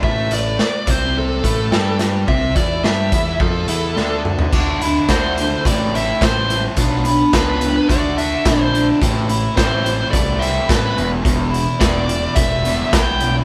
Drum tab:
CC |----------------|----------------|x---------------|----------------|
HH |--x---x---x---x-|--x---x---x-----|--x-x-x-x-x-x-x-|x-x-x-x-x-x-x-x-|
SD |----o-------o-o-|----o-------o---|----o-------o---|----o-------o---|
T2 |----------------|--------------o-|----------------|----------------|
FT |----------------|---------------o|----------------|----------------|
BD |o-----o---o-----|o-o---o-o-------|o---o---o---o---|o---o---o---o---|

CC |----------------|----------------|
HH |x-x-x-x-x-x-x-x-|x-x-x-x-x-x-x-x-|
SD |----o-------o---|----o-------o---|
T2 |----------------|----------------|
FT |----------------|----------------|
BD |o---o---o---o---|o---o---o---o---|